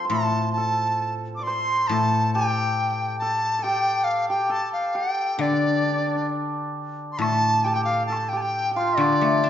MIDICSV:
0, 0, Header, 1, 5, 480
1, 0, Start_track
1, 0, Tempo, 906344
1, 57, Time_signature, 2, 2, 24, 8
1, 1016, Tempo, 872093
1, 2936, Tempo, 902256
1, 4376, Tempo, 875912
1, 5134, End_track
2, 0, Start_track
2, 0, Title_t, "Dizi"
2, 0, Program_c, 0, 73
2, 44, Note_on_c, 0, 81, 77
2, 275, Note_off_c, 0, 81, 0
2, 279, Note_on_c, 0, 81, 76
2, 604, Note_off_c, 0, 81, 0
2, 717, Note_on_c, 0, 86, 49
2, 756, Note_on_c, 0, 84, 87
2, 764, Note_off_c, 0, 86, 0
2, 992, Note_on_c, 0, 81, 85
2, 1000, Note_off_c, 0, 84, 0
2, 1242, Note_off_c, 0, 81, 0
2, 1245, Note_on_c, 0, 79, 83
2, 1713, Note_off_c, 0, 79, 0
2, 1715, Note_on_c, 0, 81, 83
2, 1957, Note_on_c, 0, 79, 90
2, 1965, Note_off_c, 0, 81, 0
2, 2183, Note_on_c, 0, 77, 77
2, 2191, Note_off_c, 0, 79, 0
2, 2318, Note_off_c, 0, 77, 0
2, 2322, Note_on_c, 0, 79, 76
2, 2442, Note_on_c, 0, 81, 87
2, 2451, Note_off_c, 0, 79, 0
2, 2558, Note_off_c, 0, 81, 0
2, 2561, Note_on_c, 0, 77, 69
2, 2689, Note_on_c, 0, 79, 84
2, 2698, Note_off_c, 0, 77, 0
2, 2933, Note_on_c, 0, 74, 77
2, 2941, Note_off_c, 0, 79, 0
2, 3413, Note_off_c, 0, 74, 0
2, 3848, Note_on_c, 0, 84, 60
2, 3880, Note_on_c, 0, 81, 98
2, 3888, Note_off_c, 0, 84, 0
2, 4125, Note_on_c, 0, 79, 78
2, 4133, Note_off_c, 0, 81, 0
2, 4142, Note_on_c, 0, 81, 65
2, 4150, Note_off_c, 0, 79, 0
2, 4177, Note_on_c, 0, 79, 80
2, 4185, Note_off_c, 0, 81, 0
2, 4230, Note_off_c, 0, 79, 0
2, 4233, Note_on_c, 0, 77, 75
2, 4346, Note_off_c, 0, 77, 0
2, 4349, Note_on_c, 0, 81, 75
2, 4471, Note_on_c, 0, 79, 70
2, 4479, Note_off_c, 0, 81, 0
2, 4516, Note_on_c, 0, 81, 68
2, 4524, Note_off_c, 0, 79, 0
2, 4539, Note_on_c, 0, 79, 75
2, 4547, Note_off_c, 0, 81, 0
2, 4720, Note_off_c, 0, 79, 0
2, 4724, Note_on_c, 0, 77, 82
2, 4847, Note_on_c, 0, 74, 86
2, 4855, Note_off_c, 0, 77, 0
2, 5134, Note_off_c, 0, 74, 0
2, 5134, End_track
3, 0, Start_track
3, 0, Title_t, "Hammered dulcimer"
3, 0, Program_c, 1, 15
3, 0, Note_on_c, 1, 60, 52
3, 0, Note_on_c, 1, 65, 63
3, 0, Note_on_c, 1, 69, 64
3, 25, Note_on_c, 1, 72, 48
3, 58, Note_off_c, 1, 69, 0
3, 61, Note_on_c, 1, 69, 58
3, 302, Note_off_c, 1, 69, 0
3, 304, Note_on_c, 1, 69, 64
3, 735, Note_on_c, 1, 74, 45
3, 776, Note_off_c, 1, 72, 0
3, 779, Note_on_c, 1, 72, 61
3, 892, Note_off_c, 1, 65, 0
3, 993, Note_off_c, 1, 60, 0
3, 1013, Note_off_c, 1, 69, 0
3, 1015, Note_on_c, 1, 69, 65
3, 1253, Note_on_c, 1, 67, 74
3, 1730, Note_off_c, 1, 69, 0
3, 1732, Note_on_c, 1, 69, 66
3, 1934, Note_off_c, 1, 69, 0
3, 1936, Note_on_c, 1, 69, 52
3, 1961, Note_off_c, 1, 67, 0
3, 1963, Note_on_c, 1, 67, 74
3, 2080, Note_off_c, 1, 74, 0
3, 2224, Note_off_c, 1, 72, 0
3, 2323, Note_off_c, 1, 67, 0
3, 2325, Note_on_c, 1, 67, 67
3, 2432, Note_off_c, 1, 69, 0
3, 2434, Note_on_c, 1, 69, 73
3, 2681, Note_off_c, 1, 67, 0
3, 2683, Note_on_c, 1, 67, 58
3, 2919, Note_on_c, 1, 62, 46
3, 2957, Note_off_c, 1, 62, 0
3, 2959, Note_on_c, 1, 62, 38
3, 2996, Note_off_c, 1, 62, 0
3, 2998, Note_on_c, 1, 62, 40
3, 3045, Note_off_c, 1, 62, 0
3, 3047, Note_on_c, 1, 62, 36
3, 3083, Note_off_c, 1, 62, 0
3, 3085, Note_on_c, 1, 62, 35
3, 3125, Note_off_c, 1, 62, 0
3, 3127, Note_on_c, 1, 62, 32
3, 3162, Note_off_c, 1, 62, 0
3, 3164, Note_on_c, 1, 62, 40
3, 3201, Note_off_c, 1, 62, 0
3, 3203, Note_on_c, 1, 62, 35
3, 3243, Note_off_c, 1, 62, 0
3, 3245, Note_on_c, 1, 62, 37
3, 3284, Note_off_c, 1, 62, 0
3, 3287, Note_on_c, 1, 62, 35
3, 3330, Note_off_c, 1, 62, 0
3, 3332, Note_on_c, 1, 62, 40
3, 3881, Note_off_c, 1, 69, 0
3, 3883, Note_on_c, 1, 69, 71
3, 4128, Note_off_c, 1, 67, 0
3, 4130, Note_on_c, 1, 67, 73
3, 4184, Note_off_c, 1, 67, 0
3, 4187, Note_on_c, 1, 67, 67
3, 4366, Note_off_c, 1, 69, 0
3, 4368, Note_on_c, 1, 69, 70
3, 4491, Note_off_c, 1, 67, 0
3, 4494, Note_on_c, 1, 67, 67
3, 4702, Note_off_c, 1, 67, 0
3, 4704, Note_on_c, 1, 67, 50
3, 4732, Note_on_c, 1, 65, 64
3, 4849, Note_off_c, 1, 62, 0
3, 4851, Note_on_c, 1, 62, 60
3, 5134, Note_off_c, 1, 62, 0
3, 5134, Note_off_c, 1, 65, 0
3, 5134, Note_off_c, 1, 67, 0
3, 5134, Note_off_c, 1, 69, 0
3, 5134, End_track
4, 0, Start_track
4, 0, Title_t, "Guzheng"
4, 0, Program_c, 2, 107
4, 0, Note_on_c, 2, 53, 44
4, 51, Note_on_c, 2, 45, 49
4, 540, Note_off_c, 2, 53, 0
4, 996, Note_off_c, 2, 45, 0
4, 1003, Note_on_c, 2, 45, 51
4, 2447, Note_off_c, 2, 45, 0
4, 2924, Note_on_c, 2, 50, 54
4, 3882, Note_on_c, 2, 45, 52
4, 4369, Note_off_c, 2, 50, 0
4, 4847, Note_on_c, 2, 50, 55
4, 4851, Note_off_c, 2, 45, 0
4, 4979, Note_on_c, 2, 57, 44
4, 5101, Note_on_c, 2, 62, 42
4, 5134, Note_off_c, 2, 50, 0
4, 5134, Note_off_c, 2, 57, 0
4, 5134, Note_off_c, 2, 62, 0
4, 5134, End_track
5, 0, Start_track
5, 0, Title_t, "Drums"
5, 3899, Note_on_c, 9, 76, 65
5, 3952, Note_off_c, 9, 76, 0
5, 4380, Note_on_c, 9, 76, 40
5, 4380, Note_on_c, 9, 77, 39
5, 4435, Note_off_c, 9, 76, 0
5, 4435, Note_off_c, 9, 77, 0
5, 4863, Note_on_c, 9, 76, 52
5, 4918, Note_off_c, 9, 76, 0
5, 5134, End_track
0, 0, End_of_file